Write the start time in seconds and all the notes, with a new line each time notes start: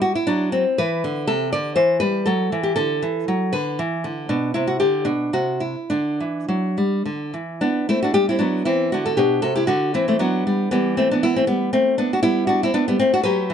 Already playing: G3
0.02 F#4
0.15 E4
0.27 F#3 D4
0.52 C4
0.78 E3 B4
1.04 D3
1.27 C3 A4
1.52 D3 D5
1.76 E3 C5
2.00 G3 B4
2.26 F#3 A4
2.52 E3
2.63 G4
2.76 D3 A4
3.02 E3
3.28 F#3
3.53 D3 B4
3.79 E3
4.04 D3
4.29 B2 D4
4.54 C3 E4
4.67 F#4
4.80 D3 G4
5.05 B2 D4
5.33 C3 F#4
5.60 E4
5.90 D3 D4
6.20 E3
6.48 F#3
6.78 G3
7.06 D3
7.34 E3
7.61 B3 D4
7.89 A3 C4 E4
8.02 D4 F#4
8.14 G3 D4 G4
8.29 C4 E4
8.39 F#3 B3 D4
8.65 E3 C4 E4
8.92 D3 D4 F#4
9.06 F#4 A4
9.17 B2 D4 G4
9.42 C3 F#4 A4
9.55 E4 G4
9.67 D3 D4 F#4
9.94 E3 C4 E4
10.08 A3 C4
10.19 F#3 B3 D4
10.47 G3
10.71 E3 G3 B3
10.97 A3 C4
11.11 B3 D4
11.23 B3 E4
11.36 A3 C4
11.47 G3 B3
11.73 A3 C4
11.98 B3 D4
12.13 D4 F#4
12.23 G3 B3 E4
12.47 D4 F#4
12.63 C4 E4
12.74 B3 D4
12.88 G3 B3
12.99 A3 C4
13.14 D4 F#4
13.23 F#3 G4 B4
13.50 E3